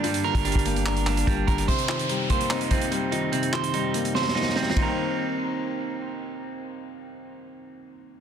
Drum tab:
RD |------------------------------------------------|------------------------------------------------|------------------------------------------x-----|------------------------------------------------|
HH |x--x-----x--x-x-x-x--x--x--x--x--x--x-----x--x--|x--x-----x--x-----x--x--x--x--x--x--x-----x-----|x--x-----x--x-----x--x--------------------------|------------------------------------------------|
CP |------------------------x-----x-----------------|------x-----------------x-----------------------|------x-----------------------------------------|------------------------------------------------|
SD |------------------------------------------------|------------------------------------------------|------------------------o-o-o-o-o-o-o-o-o-------|------------------------------------------------|
BD |---------o-----o--------------------o-----o-----|o-----------------o-----------o-----------------|------------------------------------------o-----|------------------------------------------------|

RD |------------------------------------------------|
HH |------------------------------------------------|
CP |------------------------------------------------|
SD |------------------------------------------------|
BD |------------------------------------------------|